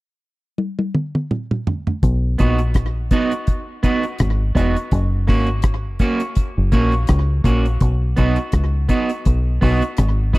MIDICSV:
0, 0, Header, 1, 4, 480
1, 0, Start_track
1, 0, Key_signature, 5, "major"
1, 0, Tempo, 723066
1, 1347, Time_signature, 4, 2, 24, 8
1, 6894, End_track
2, 0, Start_track
2, 0, Title_t, "Clean electric guitar"
2, 0, Program_c, 0, 27
2, 1582, Note_on_c, 0, 59, 72
2, 1588, Note_on_c, 0, 63, 76
2, 1593, Note_on_c, 0, 66, 84
2, 1718, Note_off_c, 0, 59, 0
2, 1721, Note_off_c, 0, 63, 0
2, 1724, Note_off_c, 0, 66, 0
2, 2066, Note_on_c, 0, 59, 88
2, 2072, Note_on_c, 0, 63, 94
2, 2077, Note_on_c, 0, 66, 109
2, 2200, Note_off_c, 0, 59, 0
2, 2203, Note_off_c, 0, 63, 0
2, 2206, Note_off_c, 0, 66, 0
2, 2542, Note_on_c, 0, 59, 82
2, 2549, Note_on_c, 0, 63, 80
2, 2555, Note_on_c, 0, 66, 83
2, 2678, Note_off_c, 0, 59, 0
2, 2682, Note_off_c, 0, 63, 0
2, 2685, Note_off_c, 0, 66, 0
2, 3019, Note_on_c, 0, 59, 72
2, 3028, Note_on_c, 0, 63, 78
2, 3033, Note_on_c, 0, 66, 93
2, 3157, Note_off_c, 0, 59, 0
2, 3161, Note_off_c, 0, 63, 0
2, 3164, Note_off_c, 0, 66, 0
2, 3501, Note_on_c, 0, 58, 75
2, 3508, Note_on_c, 0, 61, 76
2, 3513, Note_on_c, 0, 66, 86
2, 3638, Note_off_c, 0, 58, 0
2, 3641, Note_off_c, 0, 61, 0
2, 3644, Note_off_c, 0, 66, 0
2, 3982, Note_on_c, 0, 58, 81
2, 3990, Note_on_c, 0, 61, 91
2, 3994, Note_on_c, 0, 66, 94
2, 4118, Note_off_c, 0, 58, 0
2, 4122, Note_off_c, 0, 61, 0
2, 4124, Note_off_c, 0, 66, 0
2, 4460, Note_on_c, 0, 58, 74
2, 4467, Note_on_c, 0, 61, 90
2, 4473, Note_on_c, 0, 66, 96
2, 4597, Note_off_c, 0, 58, 0
2, 4601, Note_off_c, 0, 61, 0
2, 4604, Note_off_c, 0, 66, 0
2, 4940, Note_on_c, 0, 58, 66
2, 4947, Note_on_c, 0, 61, 73
2, 4952, Note_on_c, 0, 66, 76
2, 5077, Note_off_c, 0, 58, 0
2, 5081, Note_off_c, 0, 61, 0
2, 5083, Note_off_c, 0, 66, 0
2, 5420, Note_on_c, 0, 59, 79
2, 5427, Note_on_c, 0, 63, 82
2, 5432, Note_on_c, 0, 66, 92
2, 5557, Note_off_c, 0, 59, 0
2, 5561, Note_off_c, 0, 63, 0
2, 5563, Note_off_c, 0, 66, 0
2, 5899, Note_on_c, 0, 59, 83
2, 5905, Note_on_c, 0, 63, 88
2, 5910, Note_on_c, 0, 66, 86
2, 6036, Note_off_c, 0, 59, 0
2, 6040, Note_off_c, 0, 63, 0
2, 6042, Note_off_c, 0, 66, 0
2, 6381, Note_on_c, 0, 59, 80
2, 6388, Note_on_c, 0, 63, 81
2, 6393, Note_on_c, 0, 66, 94
2, 6517, Note_off_c, 0, 59, 0
2, 6521, Note_off_c, 0, 63, 0
2, 6524, Note_off_c, 0, 66, 0
2, 6860, Note_on_c, 0, 59, 69
2, 6867, Note_on_c, 0, 63, 80
2, 6871, Note_on_c, 0, 66, 94
2, 6894, Note_off_c, 0, 59, 0
2, 6894, Note_off_c, 0, 63, 0
2, 6894, Note_off_c, 0, 66, 0
2, 6894, End_track
3, 0, Start_track
3, 0, Title_t, "Fingered electric bass"
3, 0, Program_c, 1, 33
3, 1350, Note_on_c, 1, 35, 103
3, 1567, Note_off_c, 1, 35, 0
3, 1595, Note_on_c, 1, 34, 85
3, 2044, Note_off_c, 1, 34, 0
3, 2793, Note_on_c, 1, 32, 90
3, 3009, Note_off_c, 1, 32, 0
3, 3024, Note_on_c, 1, 28, 94
3, 3148, Note_off_c, 1, 28, 0
3, 3268, Note_on_c, 1, 30, 115
3, 3513, Note_off_c, 1, 30, 0
3, 3513, Note_on_c, 1, 32, 84
3, 3963, Note_off_c, 1, 32, 0
3, 4365, Note_on_c, 1, 30, 73
3, 4460, Note_off_c, 1, 30, 0
3, 4467, Note_on_c, 1, 34, 88
3, 4686, Note_off_c, 1, 34, 0
3, 4710, Note_on_c, 1, 37, 93
3, 4927, Note_off_c, 1, 37, 0
3, 4944, Note_on_c, 1, 34, 84
3, 5164, Note_off_c, 1, 34, 0
3, 5188, Note_on_c, 1, 35, 98
3, 5406, Note_off_c, 1, 35, 0
3, 5434, Note_on_c, 1, 35, 97
3, 5553, Note_off_c, 1, 35, 0
3, 5666, Note_on_c, 1, 37, 95
3, 5885, Note_off_c, 1, 37, 0
3, 6150, Note_on_c, 1, 35, 91
3, 6367, Note_off_c, 1, 35, 0
3, 6389, Note_on_c, 1, 35, 81
3, 6511, Note_off_c, 1, 35, 0
3, 6632, Note_on_c, 1, 32, 102
3, 6848, Note_off_c, 1, 32, 0
3, 6894, End_track
4, 0, Start_track
4, 0, Title_t, "Drums"
4, 387, Note_on_c, 9, 48, 50
4, 453, Note_off_c, 9, 48, 0
4, 522, Note_on_c, 9, 48, 56
4, 589, Note_off_c, 9, 48, 0
4, 628, Note_on_c, 9, 47, 67
4, 694, Note_off_c, 9, 47, 0
4, 763, Note_on_c, 9, 47, 60
4, 829, Note_off_c, 9, 47, 0
4, 869, Note_on_c, 9, 45, 79
4, 935, Note_off_c, 9, 45, 0
4, 1003, Note_on_c, 9, 45, 80
4, 1070, Note_off_c, 9, 45, 0
4, 1109, Note_on_c, 9, 43, 96
4, 1175, Note_off_c, 9, 43, 0
4, 1241, Note_on_c, 9, 43, 81
4, 1308, Note_off_c, 9, 43, 0
4, 1347, Note_on_c, 9, 36, 114
4, 1347, Note_on_c, 9, 42, 81
4, 1413, Note_off_c, 9, 42, 0
4, 1414, Note_off_c, 9, 36, 0
4, 1585, Note_on_c, 9, 42, 66
4, 1593, Note_on_c, 9, 36, 86
4, 1651, Note_off_c, 9, 42, 0
4, 1659, Note_off_c, 9, 36, 0
4, 1717, Note_on_c, 9, 42, 44
4, 1783, Note_off_c, 9, 42, 0
4, 1820, Note_on_c, 9, 42, 90
4, 1826, Note_on_c, 9, 36, 111
4, 1830, Note_on_c, 9, 37, 118
4, 1886, Note_off_c, 9, 42, 0
4, 1893, Note_off_c, 9, 36, 0
4, 1896, Note_off_c, 9, 37, 0
4, 2063, Note_on_c, 9, 42, 64
4, 2065, Note_on_c, 9, 36, 92
4, 2129, Note_off_c, 9, 42, 0
4, 2131, Note_off_c, 9, 36, 0
4, 2200, Note_on_c, 9, 42, 56
4, 2267, Note_off_c, 9, 42, 0
4, 2303, Note_on_c, 9, 42, 80
4, 2309, Note_on_c, 9, 36, 92
4, 2369, Note_off_c, 9, 42, 0
4, 2376, Note_off_c, 9, 36, 0
4, 2545, Note_on_c, 9, 42, 77
4, 2548, Note_on_c, 9, 36, 79
4, 2612, Note_off_c, 9, 42, 0
4, 2614, Note_off_c, 9, 36, 0
4, 2678, Note_on_c, 9, 42, 48
4, 2744, Note_off_c, 9, 42, 0
4, 2778, Note_on_c, 9, 42, 88
4, 2789, Note_on_c, 9, 37, 109
4, 2790, Note_on_c, 9, 36, 93
4, 2844, Note_off_c, 9, 42, 0
4, 2855, Note_off_c, 9, 37, 0
4, 2857, Note_off_c, 9, 36, 0
4, 3023, Note_on_c, 9, 36, 86
4, 3032, Note_on_c, 9, 42, 73
4, 3089, Note_off_c, 9, 36, 0
4, 3099, Note_off_c, 9, 42, 0
4, 3163, Note_on_c, 9, 42, 50
4, 3229, Note_off_c, 9, 42, 0
4, 3263, Note_on_c, 9, 42, 75
4, 3266, Note_on_c, 9, 36, 111
4, 3329, Note_off_c, 9, 42, 0
4, 3333, Note_off_c, 9, 36, 0
4, 3502, Note_on_c, 9, 46, 45
4, 3508, Note_on_c, 9, 37, 64
4, 3511, Note_on_c, 9, 36, 80
4, 3568, Note_off_c, 9, 46, 0
4, 3575, Note_off_c, 9, 37, 0
4, 3577, Note_off_c, 9, 36, 0
4, 3629, Note_on_c, 9, 42, 49
4, 3695, Note_off_c, 9, 42, 0
4, 3732, Note_on_c, 9, 42, 89
4, 3742, Note_on_c, 9, 37, 114
4, 3744, Note_on_c, 9, 36, 117
4, 3798, Note_off_c, 9, 42, 0
4, 3809, Note_off_c, 9, 37, 0
4, 3810, Note_off_c, 9, 36, 0
4, 3978, Note_on_c, 9, 42, 64
4, 3981, Note_on_c, 9, 36, 89
4, 4045, Note_off_c, 9, 42, 0
4, 4048, Note_off_c, 9, 36, 0
4, 4115, Note_on_c, 9, 42, 52
4, 4182, Note_off_c, 9, 42, 0
4, 4218, Note_on_c, 9, 42, 82
4, 4226, Note_on_c, 9, 36, 87
4, 4285, Note_off_c, 9, 42, 0
4, 4293, Note_off_c, 9, 36, 0
4, 4461, Note_on_c, 9, 42, 72
4, 4465, Note_on_c, 9, 36, 76
4, 4527, Note_off_c, 9, 42, 0
4, 4532, Note_off_c, 9, 36, 0
4, 4594, Note_on_c, 9, 42, 46
4, 4660, Note_off_c, 9, 42, 0
4, 4695, Note_on_c, 9, 42, 89
4, 4705, Note_on_c, 9, 37, 101
4, 4708, Note_on_c, 9, 36, 95
4, 4761, Note_off_c, 9, 42, 0
4, 4772, Note_off_c, 9, 37, 0
4, 4775, Note_off_c, 9, 36, 0
4, 4941, Note_on_c, 9, 36, 87
4, 4947, Note_on_c, 9, 42, 70
4, 5007, Note_off_c, 9, 36, 0
4, 5013, Note_off_c, 9, 42, 0
4, 5082, Note_on_c, 9, 42, 44
4, 5148, Note_off_c, 9, 42, 0
4, 5181, Note_on_c, 9, 42, 73
4, 5185, Note_on_c, 9, 36, 106
4, 5247, Note_off_c, 9, 42, 0
4, 5252, Note_off_c, 9, 36, 0
4, 5422, Note_on_c, 9, 42, 61
4, 5430, Note_on_c, 9, 36, 78
4, 5488, Note_off_c, 9, 42, 0
4, 5497, Note_off_c, 9, 36, 0
4, 5550, Note_on_c, 9, 42, 50
4, 5616, Note_off_c, 9, 42, 0
4, 5656, Note_on_c, 9, 42, 91
4, 5664, Note_on_c, 9, 36, 107
4, 5666, Note_on_c, 9, 37, 113
4, 5722, Note_off_c, 9, 42, 0
4, 5731, Note_off_c, 9, 36, 0
4, 5732, Note_off_c, 9, 37, 0
4, 5901, Note_on_c, 9, 42, 68
4, 5903, Note_on_c, 9, 36, 84
4, 5967, Note_off_c, 9, 42, 0
4, 5969, Note_off_c, 9, 36, 0
4, 6037, Note_on_c, 9, 42, 59
4, 6103, Note_off_c, 9, 42, 0
4, 6143, Note_on_c, 9, 42, 80
4, 6148, Note_on_c, 9, 36, 88
4, 6209, Note_off_c, 9, 42, 0
4, 6215, Note_off_c, 9, 36, 0
4, 6386, Note_on_c, 9, 46, 50
4, 6387, Note_on_c, 9, 36, 75
4, 6452, Note_off_c, 9, 46, 0
4, 6453, Note_off_c, 9, 36, 0
4, 6518, Note_on_c, 9, 42, 45
4, 6585, Note_off_c, 9, 42, 0
4, 6617, Note_on_c, 9, 42, 87
4, 6627, Note_on_c, 9, 37, 97
4, 6630, Note_on_c, 9, 36, 97
4, 6683, Note_off_c, 9, 42, 0
4, 6693, Note_off_c, 9, 37, 0
4, 6696, Note_off_c, 9, 36, 0
4, 6862, Note_on_c, 9, 36, 82
4, 6870, Note_on_c, 9, 42, 74
4, 6894, Note_off_c, 9, 36, 0
4, 6894, Note_off_c, 9, 42, 0
4, 6894, End_track
0, 0, End_of_file